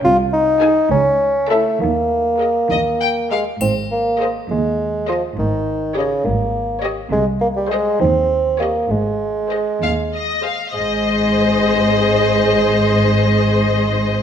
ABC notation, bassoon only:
X:1
M:6/8
L:1/16
Q:3/8=68
K:Ab
V:1 name="Bassoon"
F2 E4 ^C4 =A,2 | B,8- B,2 A,2 | C2 B,3 z A,4 F,2 | E,4 D,2 B,4 z2 |
A,2 B, G, A,2 C4 B,2 | A,8- A,2 z2 | A,12- | A,12 |]